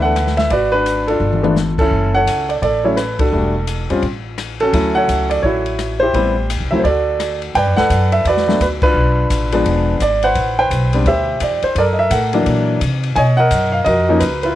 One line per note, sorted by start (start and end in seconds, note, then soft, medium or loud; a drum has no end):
0.00 0.47 D2 medium
0.00 0.13 E3 medium
0.00 0.13 A3 soft
0.00 0.13 B3 medium
0.00 0.13 D4 medium
0.00 0.36 E5 medium
0.00 0.35 F#5 loud
0.04 0.49 A4 medium
0.04 0.48 B4 medium
0.16 cross-stick medium
0.16 hi-hat pedal medium
0.16 ride medium
0.27 snare soft
0.37 0.50 E5 medium
0.37 snare soft
0.37 ride soft
0.50 1.17 G#1 medium
0.50 0.73 F#4 medium
0.50 0.70 B4 medium
0.50 0.71 D5 medium
0.50 kick soft
0.50 ride medium
0.72 1.08 D4 medium
0.72 1.18 F#4 medium
0.72 1.05 B4 loud
0.86 hi-hat pedal medium
0.86 ride medium
1.07 1.42 D4 medium
1.07 1.75 F4 soft
1.07 1.77 A4 medium
1.07 ride soft
1.20 1.87 G1 medium
1.33 mid tom soft
1.42 1.55 F3 medium
1.42 1.55 A3 medium
1.42 1.55 B3 medium
1.42 1.55 D4 medium
1.42 mid tom medium
1.56 snare soft
1.56 hi-hat pedal medium
1.78 2.46 C#4 medium
1.78 2.46 E4 medium
1.78 2.15 A4 medium
1.78 kick medium
1.78 crash medium
1.91 2.24 F#1 medium
1.91 kick soft
2.14 2.62 A4 medium
2.14 2.81 C#5 medium
2.14 2.50 F#5 loud
2.26 2.59 C#2 medium
2.26 hi-hat pedal medium
2.26 ride medium
2.49 2.54 D5 medium
2.49 ride soft
2.62 3.29 A1 medium
2.62 3.18 A4 medium
2.62 2.85 D5 medium
2.62 kick soft
2.62 ride soft
2.84 2.96 F#3 medium
2.84 2.96 A3 medium
2.84 2.96 C#4 medium
2.84 2.96 E4 medium
2.84 2.96 C#5 medium
2.96 3.19 B4 medium
2.96 cross-stick medium
2.96 hi-hat pedal medium
2.96 ride medium
3.19 3.32 D4 medium
3.19 3.32 F#4 medium
3.19 3.86 A4 medium
3.19 kick medium
3.19 ride medium
3.32 3.85 E1 medium
3.32 3.52 G3 medium
3.32 3.52 A3 soft
3.32 3.53 D4 soft
3.32 3.53 F#4 medium
3.67 hi-hat pedal medium
3.67 ride medium
3.90 4.01 E2 medium
3.90 4.02 G3 medium
3.90 4.02 C4 medium
3.90 4.02 C#4 medium
3.90 4.02 F4 medium
3.90 ride soft
4.02 4.69 A1 medium
4.02 kick soft
4.02 ride soft
4.38 cross-stick medium
4.38 hi-hat pedal medium
4.38 ride medium
4.60 4.73 C#4 medium
4.60 5.28 F#4 medium
4.60 4.96 A4 loud
4.60 ride soft
4.73 5.06 D2 medium
4.73 5.71 F#3 medium
4.73 5.71 A3 soft
4.73 5.71 C#4 medium
4.73 5.44 E4 medium
4.73 kick soft
4.73 ride medium
4.95 5.63 A4 medium
4.95 5.41 C#5 medium
4.95 5.28 F#5 loud
5.08 5.41 C#2 medium
5.08 hi-hat pedal medium
5.08 ride medium
5.30 5.44 D5 medium
5.30 ride medium
5.43 6.10 A1 medium
5.43 6.01 E4 medium
5.43 6.11 F#4 medium
5.43 5.96 C#5 medium
5.43 kick soft
5.66 ride soft
5.79 cross-stick medium
5.79 hi-hat pedal medium
5.79 ride medium
6.00 6.14 E4 medium
6.00 6.68 G4 medium
6.00 6.45 C5 loud
6.14 6.57 A1 medium
6.14 6.34 G3 medium
6.14 6.34 B3 medium
6.14 6.35 C4 medium
6.14 6.35 E4 medium
6.14 kick soft
6.14 ride medium
6.50 hi-hat pedal medium
6.50 ride medium
6.60 6.71 C2 medium
6.71 6.83 C#2 medium
6.71 6.83 F#3 medium
6.71 6.83 A3 medium
6.71 6.84 C4 medium
6.71 6.84 E4 medium
6.71 6.79 E5 medium
6.79 6.84 C5 medium
6.84 7.51 D2 medium
6.84 7.52 F#4 medium
6.84 7.51 A4 medium
6.84 7.37 D5 medium
6.84 kick soft
6.84 ride soft
7.20 cross-stick medium
7.20 hi-hat pedal soft
7.20 ride medium
7.42 ride soft
7.55 7.67 G2 medium
7.55 7.77 B4 medium
7.55 8.22 D5 medium
7.55 7.78 G5 loud
7.55 kick soft
7.55 ride medium
7.67 7.77 F#2 medium
7.77 8.44 A4 medium
7.77 8.28 B4 medium
7.77 8.13 F#5 loud
7.77 snare soft
7.90 8.24 F#2 medium
7.90 kick soft
7.90 hi-hat pedal medium
7.90 ride medium
8.12 8.26 E5 medium
8.12 ride soft
8.25 8.59 E2 medium
8.25 8.62 D5 medium
8.25 kick soft
8.25 ride medium
8.29 8.93 F#4 medium
8.29 8.61 B4 medium
8.37 snare soft
8.48 8.59 F#3 medium
8.48 8.59 A3 medium
8.48 8.60 B3 soft
8.48 8.60 D4 medium
8.48 snare soft
8.60 8.93 D2 medium
8.60 8.67 B4 medium
8.60 kick soft
8.60 hi-hat pedal medium
8.60 ride medium
8.82 9.52 D4 medium
8.82 9.84 F4 medium
8.82 9.84 B4 loud
8.82 kick medium
8.82 crash medium
8.94 9.29 B1 medium
9.30 9.64 A1 medium
9.30 kick soft
9.30 hi-hat pedal medium
9.30 ride medium
9.52 9.98 F3 medium
9.52 9.98 G#3 medium
9.52 9.99 B3 medium
9.52 9.99 D4 medium
9.52 ride medium
9.65 9.99 E1 medium
9.65 kick soft
9.65 ride medium
10.00 10.34 G#1 medium
10.00 10.24 D5 medium
10.00 kick soft
10.00 hi-hat pedal medium
10.00 ride medium
10.22 10.58 B4 medium
10.22 10.58 C5 medium
10.22 10.56 F#5 loud
10.22 ride soft
10.35 10.69 A1 medium
10.35 kick soft
10.35 ride medium
10.59 11.24 B4 medium
10.59 11.07 C5 medium
10.59 11.08 G5 loud
10.70 11.04 B1 medium
10.70 kick soft
10.70 hi-hat pedal medium
10.70 ride medium
10.93 11.05 G3 medium
10.93 11.05 B3 medium
10.93 11.05 C4 medium
10.93 11.05 D4 medium
10.93 ride soft
11.05 11.39 D2 medium
11.05 11.73 G4 medium
11.05 11.62 C5 medium
11.05 11.43 E5 medium
11.05 kick soft
11.05 ride medium
11.40 11.61 E2 medium
11.40 11.64 D5 medium
11.40 kick soft
11.40 hi-hat pedal medium
11.40 ride medium
11.62 11.77 C5 medium
11.62 muted upright bass stroke soft
11.62 ride soft
11.75 12.10 F#2 medium
11.75 12.11 A4 medium
11.75 12.11 A#4 medium
11.75 11.83 D5 medium
11.75 kick soft
11.75 ride medium
11.93 11.98 D#5 medium
11.99 12.11 E5 medium
12.10 12.45 A2 medium
12.10 12.78 A4 medium
12.10 12.77 A#4 medium
12.10 12.77 F#5 medium
12.10 kick soft
12.10 hi-hat pedal medium
12.10 ride medium
12.33 12.79 E3 medium
12.33 12.79 F#3 medium
12.33 12.79 A#3 medium
12.33 12.79 D4 medium
12.33 ride soft
12.46 12.80 A#2 medium
12.46 kick soft
12.46 ride medium
12.81 13.15 C3 medium
12.81 kick soft
12.81 hi-hat pedal medium
12.81 ride medium
13.03 ride soft
13.16 13.50 B2 medium
13.16 13.83 C#5 medium
13.16 13.37 D#5 medium
13.16 13.21 G#5 loud
13.16 kick soft
13.16 ride medium
13.37 13.85 A#4 medium
13.37 13.83 D#5 medium
13.37 13.70 F#5 loud
13.51 13.85 F#2 medium
13.51 kick soft
13.51 hi-hat pedal medium
13.51 ride medium
13.72 13.77 F5 medium
13.85 14.20 F2 medium
13.85 14.53 F#4 medium
13.85 14.52 A#4 medium
13.85 14.21 D#5 loud
13.85 kick soft
13.85 ride medium
14.09 14.20 F3 medium
14.09 14.20 A#3 medium
14.09 14.21 C#4 medium
14.09 14.21 D#4 medium
14.19 14.55 C#2 medium
14.19 14.42 B4 medium
14.19 kick soft
14.19 hi-hat pedal medium
14.19 ride medium
14.43 14.55 E4 medium
14.43 14.55 F4 medium
14.43 14.55 B4 medium
14.43 ride soft